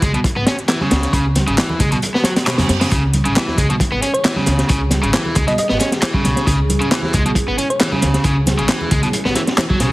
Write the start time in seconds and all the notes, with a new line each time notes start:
0.02 C#2 G#3, kick, closed hi-hat
0.13 B2, closed hi-hat, high conga
0.24 muted upright bass stroke, kick, closed hi-hat
0.36 G#1 B3
0.46 C#4, snare, closed hi-hat
0.59 closed hi-hat
0.68 E3, snare, clap, closed hi-hat
0.81 C#3, snare, high conga
0.90 C#2, snare, closed hi-hat, low conga
1.03 snare, closed hi-hat
1.13 C#2 C#3, kick, closed hi-hat
1.35 snare, closed hi-hat, high conga
1.47 G#1 C#3, closed hi-hat
1.58 E3, snare, clap, closed hi-hat
1.69 low conga
1.80 C#2 G#3, kick, closed hi-hat
1.92 B2, closed hi-hat, high conga
2.02 closed hi-hat, reverse cymbal
2.14 B3, snare
2.24 F#3, snare, closed hi-hat
2.36 snare, closed hi-hat
2.46 B2, snare, clap, closed hi-hat
2.58 E2 C#3, snare, closed hi-hat, high conga
2.69 F#2, snare, closed hi-hat
2.81 C#3, snare, closed hi-hat
2.91 C#2 C#3 C#4 E4 G#4, kick, closed hi-hat
3.13 closed hi-hat, high conga
3.25 G#1 C#3, closed hi-hat
3.36 E3, snare, clap, closed hi-hat
3.48 snare, low conga
3.58 C#2 G#3, kick, closed hi-hat
3.70 B2, closed hi-hat, high conga
3.80 kick, closed hi-hat
3.92 G#1 B3
4.02 C#4, closed hi-hat
4.14 C#5, closed hi-hat
4.25 E3, snare, clap, closed hi-hat
4.36 C#3, snare, high conga
4.46 C#2, snare, closed hi-hat, low conga
4.58 snare, closed hi-hat
4.69 C#2 C#3, kick, closed hi-hat
4.90 snare, closed hi-hat, high conga
5.03 G#1 C#3, closed hi-hat
5.13 E3, snare, clap, closed hi-hat
5.25 low conga
5.35 C#2 G#3, kick, closed hi-hat
5.47 B2 D#5, closed hi-hat, high conga
5.58 D#5, closed hi-hat
5.69 G#1 B3, snare
5.80 C#4, snare, closed hi-hat
5.92 snare, closed hi-hat
6.02 E3, snare, clap, closed hi-hat
6.13 C#3, kick, high conga
6.24 B1, snare, closed hi-hat
6.36 snare, closed hi-hat
6.46 C#2 C#3, kick, closed hi-hat
6.69 closed hi-hat, high conga
6.80 G#1 C#3, closed hi-hat
6.91 E3, snare, clap, closed hi-hat
7.02 snare, low conga
7.13 C#2 G#3, kick, closed hi-hat
7.25 B2, closed hi-hat, high conga
7.35 kick, closed hi-hat
7.47 G#1 B3
7.58 C#4, closed hi-hat
7.70 C#5, closed hi-hat
7.80 E3, snare, clap, closed hi-hat
7.92 C#3, snare, high conga
8.02 C#2, snare, closed hi-hat, low conga
8.14 snare, closed hi-hat
8.24 C#2 C#3, kick, closed hi-hat
8.46 snare, closed hi-hat, high conga
8.58 G#1 C#3, closed hi-hat
8.69 E3, snare, clap, closed hi-hat
8.81 low conga
8.91 C#2 G#3, kick, closed hi-hat
9.03 B2, closed hi-hat, high conga
9.13 closed hi-hat
9.25 G#1 B3, snare
9.35 E3, snare, closed hi-hat
9.47 snare, closed hi-hat
9.58 E3, snare, clap, closed hi-hat
9.70 F#3, kick, high conga
9.80 B1 C#3, snare, closed hi-hat